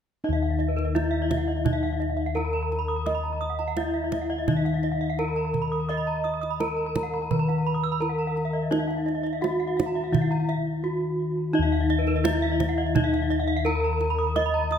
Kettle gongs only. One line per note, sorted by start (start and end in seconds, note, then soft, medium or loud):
0.24 2.32 D#4 medium
0.29 4.46 D#2 medium
0.96 1.04 E4 soft
2.37 2.45 E4 soft
3.07 5.15 D#5 medium
3.77 3.85 E4 soft
4.48 6.56 D#3 medium
5.19 5.27 E4 soft
5.90 7.98 D#5 medium
6.61 6.69 E4 soft
7.32 9.39 D#3 medium
8.02 8.10 E4 soft
8.71 10.79 D#4 medium
9.42 9.50 E4 soft
10.12 12.20 D#3 medium
10.83 10.91 E4 soft
11.54 13.62 D#4 medium
11.59 14.79 D#2 medium
12.25 12.33 E4 soft
13.66 13.74 E4 soft
14.36 14.79 D#5 medium